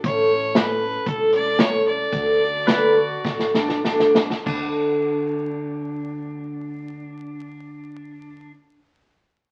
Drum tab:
CC |----------------|----------------|x---------------|----------------|
HH |x---x---x-x-x---|x---x-----------|----------------|----------------|
SD |----o-------o---|----o---oooooooo|----------------|----------------|
BD |o-------o-------|o-------o-------|o---------------|----------------|